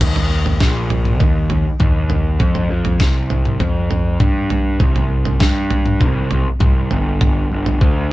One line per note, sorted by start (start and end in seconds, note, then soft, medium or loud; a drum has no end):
0.01 0.57 D#2 medium
0.01 kick loud
0.01 floor tom medium
0.01 crash medium
0.16 floor tom medium
0.46 floor tom medium
0.60 1.20 A#1 medium
0.60 kick loud
0.60 snare medium
0.90 floor tom medium
1.05 mid tom medium
1.20 1.48 D#2 medium
1.20 kick medium
1.20 floor tom medium
1.50 1.65 D#2 medium
1.50 floor tom medium
1.80 2.37 D#2 medium
1.80 kick loud
1.80 mid tom medium
2.10 floor tom medium
2.40 2.68 F2 loud
2.40 kick loud
2.40 floor tom medium
2.55 floor tom medium
2.70 2.98 F2 medium
2.85 floor tom medium
3.00 3.56 C2 medium
3.00 kick loud
3.00 snare medium
3.30 floor tom medium
3.45 mid tom medium
3.60 4.17 F2 medium
3.60 kick loud
3.60 floor tom medium
3.91 floor tom medium
4.20 4.77 G2 medium
4.20 kick loud
4.20 mid tom medium
4.50 floor tom medium
4.80 5.37 C2 medium
4.80 kick loud
4.80 floor tom medium
4.96 floor tom medium
5.25 floor tom medium
5.40 6.02 G2 medium
5.40 kick loud
5.40 snare medium
5.71 floor tom medium
5.86 mid tom medium
6.00 6.28 C2 medium
6.00 kick loud
6.00 floor tom medium
6.31 6.45 C2 medium
6.31 floor tom medium
6.60 6.88 C2 medium
6.60 kick loud
6.60 mid tom medium
6.91 7.47 G1 medium
6.91 floor tom medium
7.21 kick loud
7.21 floor tom medium
7.51 7.79 G1 medium
7.66 floor tom medium
7.81 8.13 D2 loud
7.81 kick loud